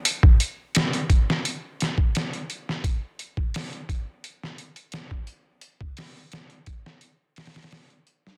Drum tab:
HH |x---x---x-x-x---x---x---x-x-x---|x---x---o-x-x---x---x-x-x---x---|x---o---x-x-x---x---ooooo-x-x---|
SD |--------o-----o-----o---o-----o-|--------o---------o-----o-------|----o---o-----o-----ooooo-----o-|
BD |--o---------o---------o---------|o-----o-----o-------------o-----|--o---------o-------------------|